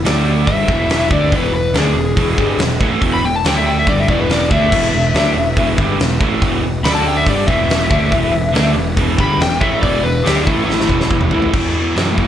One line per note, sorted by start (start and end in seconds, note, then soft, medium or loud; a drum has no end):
0.00 0.44 D2 medium
0.00 0.22 E4 medium
0.04 0.46 D3 medium
0.04 0.47 A3 loud
0.04 0.47 A3 medium
0.04 0.47 D4 loud
0.04 0.47 D4 medium
0.04 0.47 A4 medium
0.04 snare loud
0.04 open hi-hat medium
0.47 0.67 G1 medium
0.47 0.68 G2 loud
0.47 0.68 D3 loud
0.47 0.68 G3 loud
0.47 3.42 G#3 medium
0.47 3.42 B3 medium
0.47 3.41 E4 medium
0.47 3.42 B4 medium
0.47 1.09 E5 loud
0.47 kick loud
0.47 open hi-hat medium
0.68 1.08 E1 medium
0.68 1.10 E2 medium
0.68 1.10 B2 medium
0.68 1.11 E3 medium
0.68 kick loud
0.89 snare loud
0.89 open hi-hat medium
1.10 1.30 D2 medium
1.10 1.32 D3 loud
1.10 1.32 A3 loud
1.10 1.32 D4 loud
1.10 1.32 D5 loud
1.10 kick loud
1.32 1.52 E1 loud
1.32 1.51 E2 loud
1.32 1.52 B2 loud
1.32 1.53 E3 loud
1.32 1.54 B4 loud
1.32 kick medium
1.32 open hi-hat medium
1.52 1.73 E1 medium
1.52 1.70 E2 medium
1.52 1.70 B2 medium
1.52 1.75 B4 medium
1.74 1.94 D2 loud
1.74 1.95 D3 loud
1.74 1.95 A3 medium
1.74 1.95 D4 loud
1.74 snare loud
1.74 open hi-hat medium
1.78 2.59 G#4 loud
1.94 2.15 E1 medium
1.94 2.13 E2 medium
1.94 2.13 B2 medium
2.17 2.37 E1 loud
2.17 2.37 E2 loud
2.17 2.38 B2 loud
2.17 2.38 E3 loud
2.17 kick loud
2.17 open hi-hat medium
2.37 2.58 G1 loud
2.37 2.58 G2 medium
2.37 2.59 D3 loud
2.37 2.59 G3 loud
2.37 kick loud
2.58 2.79 E1 medium
2.58 2.76 E2 medium
2.58 2.77 B2 medium
2.58 snare loud
2.58 open hi-hat medium
2.80 3.00 A1 loud
2.80 3.01 A2 loud
2.80 3.01 E3 loud
2.80 3.02 A3 loud
2.80 kick loud
3.02 3.22 E1 loud
3.02 3.22 E2 loud
3.02 3.23 B2 loud
3.02 3.23 E3 loud
3.02 kick loud
3.02 open hi-hat medium
3.13 3.23 B5 loud
3.23 3.43 E1 medium
3.23 3.40 E2 medium
3.23 3.41 B2 medium
3.23 3.35 G5 medium
3.36 3.45 A5 loud
3.43 3.85 D2 loud
3.43 3.87 D3 loud
3.43 3.87 A3 medium
3.43 3.87 A3 loud
3.43 3.86 D4 medium
3.43 3.87 D4 loud
3.43 3.87 A4 medium
3.43 3.56 G5 medium
3.43 snare loud
3.43 open hi-hat medium
3.57 3.66 E5 medium
3.66 3.76 G5 medium
3.79 3.88 E5 loud
3.86 4.07 G1 medium
3.86 4.07 G2 loud
3.86 4.07 D3 loud
3.86 4.08 G3 loud
3.86 6.81 G#3 medium
3.86 6.82 B3 medium
3.86 6.81 E4 medium
3.86 6.82 B4 medium
3.86 3.98 D5 medium
3.86 kick loud
3.86 open hi-hat medium
4.00 4.09 E5 medium
4.07 4.48 E1 medium
4.07 4.50 E2 medium
4.07 4.50 B2 medium
4.07 4.50 E3 medium
4.07 4.19 D5 medium
4.07 kick loud
4.20 4.30 B4 loud
4.29 4.52 D5 loud
4.29 snare loud
4.29 open hi-hat medium
4.50 4.71 D2 medium
4.50 4.71 D3 loud
4.50 4.71 A3 loud
4.50 4.72 D4 loud
4.50 5.75 E5 medium
4.50 kick loud
4.71 4.92 E1 medium
4.71 4.92 E2 loud
4.71 4.93 B2 loud
4.71 4.93 E3 loud
4.71 kick loud
4.71 crash loud
4.93 5.13 E1 medium
4.93 5.10 E2 medium
4.93 5.11 B2 medium
5.14 5.34 D2 loud
5.14 5.35 D3 medium
5.14 5.35 A3 medium
5.14 5.36 D4 medium
5.14 snare loud
5.14 open hi-hat medium
5.35 5.56 E1 medium
5.35 5.53 E2 medium
5.35 5.53 B2 medium
5.57 5.77 E1 loud
5.57 5.77 E2 loud
5.57 5.78 B2 loud
5.57 5.78 E3 loud
5.57 kick loud
5.57 open hi-hat medium
5.78 5.98 G1 medium
5.78 5.99 G2 loud
5.78 5.99 D3 medium
5.78 5.99 G3 loud
5.78 kick loud
5.99 6.19 E1 medium
5.99 6.16 E2 medium
5.99 6.17 B2 medium
5.99 snare loud
5.99 open hi-hat medium
6.20 6.40 A1 loud
6.20 6.42 A2 loud
6.20 6.41 E3 loud
6.20 6.42 A3 loud
6.20 kick loud
6.42 6.62 E1 loud
6.42 6.61 E2 loud
6.42 6.62 B2 loud
6.42 6.63 E3 loud
6.42 kick loud
6.42 open hi-hat medium
6.63 6.83 E1 medium
6.63 6.80 E2 medium
6.63 6.81 B2 medium
6.83 7.24 D2 loud
6.83 7.26 D3 loud
6.83 7.26 A3 medium
6.83 7.27 A3 medium
6.83 7.27 D4 loud
6.83 7.27 D4 medium
6.83 7.27 A4 medium
6.83 6.94 B5 loud
6.83 snare loud
6.83 open hi-hat medium
6.95 7.05 A5 medium
7.06 7.16 G5 medium
7.17 7.27 E5 loud
7.26 7.47 G1 loud
7.26 7.47 G2 loud
7.26 7.47 D3 loud
7.26 7.48 G3 loud
7.26 10.44 G#3 medium
7.26 10.44 B3 medium
7.26 10.44 E4 medium
7.26 10.44 B4 medium
7.26 7.49 D5 loud
7.26 kick loud
7.26 open hi-hat medium
7.47 7.88 E1 loud
7.47 7.90 E2 medium
7.47 7.89 B2 loud
7.47 7.89 E3 loud
7.47 8.72 E5 loud
7.47 kick loud
7.70 snare loud
7.70 open hi-hat medium
7.89 8.11 D2 medium
7.89 8.11 D3 loud
7.89 8.11 A3 loud
7.89 8.11 D4 loud
7.89 kick loud
8.11 8.32 E1 loud
8.11 8.31 E2 loud
8.11 8.31 B2 loud
8.11 8.33 E3 loud
8.11 kick loud
8.11 open hi-hat medium
8.33 8.53 E1 medium
8.33 8.50 E2 medium
8.33 8.50 B2 medium
8.53 8.75 D2 loud
8.53 8.75 D3 loud
8.53 8.75 A3 loud
8.53 8.75 D4 loud
8.53 snare loud
8.53 open hi-hat medium
8.75 8.96 E1 medium
8.75 8.93 E2 medium
8.75 8.93 B2 medium
8.96 9.17 E1 loud
8.96 9.17 E2 loud
8.96 9.18 B2 loud
8.96 9.18 E3 loud
8.96 kick loud
8.96 open hi-hat medium
9.18 9.38 G1 medium
9.18 9.39 G2 medium
9.18 9.39 D3 loud
9.18 9.39 G3 loud
9.18 9.40 B5 medium
9.18 kick loud
9.40 9.60 E1 medium
9.40 9.57 E2 medium
9.40 9.57 B2 medium
9.40 9.62 G5 loud
9.40 snare loud
9.40 open hi-hat medium
9.61 9.81 A1 loud
9.61 9.82 A2 loud
9.61 9.81 E3 loud
9.61 9.82 A3 loud
9.61 9.81 E5 medium
9.61 kick loud
9.82 10.03 E1 loud
9.82 10.02 E2 loud
9.82 10.03 B2 loud
9.82 10.03 E3 loud
9.82 10.03 D5 loud
9.82 kick medium
9.82 open hi-hat medium
10.03 10.24 E1 medium
10.03 10.21 E2 medium
10.03 10.21 B2 medium
10.03 10.25 B4 loud
10.23 10.45 D2 loud
10.23 10.45 D3 medium
10.23 10.46 A3 loud
10.23 10.46 D4 loud
10.23 10.44 G4 medium
10.23 open hi-hat medium
10.27 snare loud
10.44 10.87 A1 loud
10.44 10.88 A2 loud
10.44 10.88 E3 loud
10.44 10.89 A3 loud
10.44 10.90 A3 medium
10.44 10.64 E4 medium
10.44 10.89 E4 medium
10.44 10.89 A4 medium
10.44 kick loud
10.65 11.50 E4 loud
10.70 snare medium
10.80 snare medium
10.88 11.29 E1 loud
10.88 11.31 E2 medium
10.88 11.31 B2 loud
10.88 11.31 E3 loud
10.88 11.54 G#3 medium
10.88 11.54 B3 medium
10.88 11.54 E4 medium
10.88 11.54 B4 medium
10.88 kick medium
11.01 snare medium
11.11 kick medium
11.21 mid tom medium
11.31 11.52 A1 loud
11.31 11.53 A2 loud
11.31 11.53 E3 loud
11.31 11.53 A3 loud
11.31 floor tom medium
11.42 floor tom medium
11.53 11.95 E2 medium
11.53 11.75 E2 medium
11.53 11.75 B2 medium
11.53 11.75 E3 loud
11.53 kick loud
11.53 crash loud
11.76 11.95 E2 medium
11.76 11.96 B2 medium
11.76 11.96 E3 medium
11.96 12.16 E2 medium
11.96 12.28 F#2 medium
11.96 12.17 B2 medium
11.96 12.17 E3 loud
11.96 snare loud
11.96 open hi-hat soft
12.11 12.18 A3 medium
12.17 12.28 E2 medium
12.17 12.28 B2 medium
12.17 12.28 E3 medium
12.17 12.28 A#3 medium
12.17 kick medium